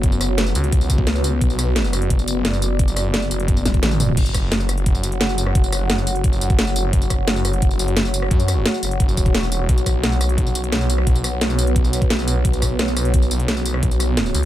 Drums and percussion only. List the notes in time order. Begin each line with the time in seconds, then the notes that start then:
0.03 kick, closed hi-hat
0.12 tambourine
0.21 cross-stick, closed hi-hat, tambourine
0.38 snare, closed hi-hat
0.47 tambourine
0.55 closed hi-hat, tambourine
0.64 closed hi-hat
0.72 kick, closed hi-hat
0.81 tambourine
0.90 kick, closed hi-hat, tambourine
0.98 kick
1.07 snare, closed hi-hat
1.16 tambourine
1.24 closed hi-hat, tambourine
1.41 kick, closed hi-hat
1.50 tambourine
1.59 cross-stick, closed hi-hat, tambourine
1.76 snare, closed hi-hat
1.85 tambourine
1.93 cross-stick, closed hi-hat, tambourine
2.02 closed hi-hat
2.10 kick, closed hi-hat
2.19 tambourine
2.28 closed hi-hat, tambourine
2.45 snare, closed hi-hat
2.53 tambourine
2.62 closed hi-hat, tambourine
2.79 kick, closed hi-hat
2.88 closed hi-hat, tambourine
2.97 cross-stick, closed hi-hat, tambourine
3.14 snare, closed hi-hat
3.22 tambourine
3.31 closed hi-hat, tambourine
3.40 closed hi-hat
3.48 kick, closed hi-hat
3.57 tambourine
3.66 kick, snare, closed hi-hat, high tom, tambourine
3.74 kick, closed hi-hat
3.83 snare, closed hi-hat, mid tom
3.91 mid tom, tambourine
4.00 closed hi-hat, mid tom, tambourine
4.09 mid tom
4.17 kick, closed hi-hat, crash
4.26 closed hi-hat, tambourine
4.34 kick, cross-stick, closed hi-hat, tambourine
4.52 snare, closed hi-hat
4.60 tambourine
4.69 cross-stick, closed hi-hat, tambourine
4.78 closed hi-hat
4.86 kick, closed hi-hat
4.95 tambourine
5.03 closed hi-hat, tambourine
5.12 closed hi-hat
5.21 snare, closed hi-hat
5.29 tambourine
5.38 closed hi-hat, tambourine
5.47 cross-stick
5.55 kick, closed hi-hat
5.64 closed hi-hat, tambourine
5.72 cross-stick, closed hi-hat, tambourine
5.90 snare, closed hi-hat
5.98 tambourine
6.07 closed hi-hat, tambourine
6.16 closed hi-hat
6.24 kick, closed hi-hat
6.33 tambourine
6.41 closed hi-hat, tambourine
6.50 kick, closed hi-hat
6.59 snare, closed hi-hat
6.67 tambourine
6.76 closed hi-hat, tambourine
6.93 kick, closed hi-hat
7.02 closed hi-hat, tambourine
7.10 kick, cross-stick, closed hi-hat, tambourine
7.28 snare, closed hi-hat
7.36 tambourine
7.45 cross-stick, closed hi-hat, tambourine
7.53 closed hi-hat
7.62 kick, closed hi-hat
7.71 tambourine
7.79 closed hi-hat, tambourine
7.88 closed hi-hat
7.97 snare, closed hi-hat
8.05 tambourine
8.14 closed hi-hat, tambourine
8.22 cross-stick
8.31 kick, closed hi-hat
8.40 closed hi-hat, tambourine
8.48 cross-stick, closed hi-hat, tambourine
8.66 snare, closed hi-hat
8.74 tambourine
8.83 closed hi-hat, tambourine
8.91 closed hi-hat
9.00 kick, closed hi-hat
9.09 tambourine
9.17 kick, closed hi-hat, tambourine
9.26 kick, closed hi-hat
9.35 snare, closed hi-hat
9.43 tambourine
9.52 closed hi-hat, tambourine
9.69 kick, closed hi-hat
9.78 closed hi-hat, tambourine
9.86 kick, cross-stick, closed hi-hat, tambourine
10.04 snare, closed hi-hat
10.12 tambourine
10.21 cross-stick, closed hi-hat, tambourine
10.29 closed hi-hat
10.38 kick, closed hi-hat
10.47 tambourine
10.55 closed hi-hat, tambourine
10.64 closed hi-hat
10.72 snare, closed hi-hat
10.81 tambourine
10.90 closed hi-hat, tambourine
10.98 cross-stick
11.07 kick, closed hi-hat
11.16 closed hi-hat, tambourine
11.24 cross-stick, closed hi-hat, tambourine
11.41 snare, closed hi-hat
11.50 tambourine
11.59 closed hi-hat, tambourine
11.67 closed hi-hat
11.76 kick, closed hi-hat
11.85 tambourine
11.93 closed hi-hat, tambourine
12.02 kick, closed hi-hat
12.10 snare, closed hi-hat
12.19 tambourine
12.28 closed hi-hat, tambourine
12.45 kick, closed hi-hat
12.53 closed hi-hat, tambourine
12.62 kick, cross-stick, closed hi-hat, tambourine
12.79 snare, closed hi-hat
12.88 tambourine
12.97 cross-stick, closed hi-hat, tambourine
13.05 closed hi-hat
13.14 kick, closed hi-hat
13.22 tambourine
13.31 closed hi-hat, tambourine
13.40 closed hi-hat
13.48 snare, closed hi-hat
13.57 tambourine
13.66 closed hi-hat, tambourine
13.74 cross-stick
13.83 kick, closed hi-hat
13.91 closed hi-hat, tambourine
14.00 cross-stick, closed hi-hat, tambourine
14.17 snare, closed hi-hat
14.26 tambourine
14.35 closed hi-hat, tambourine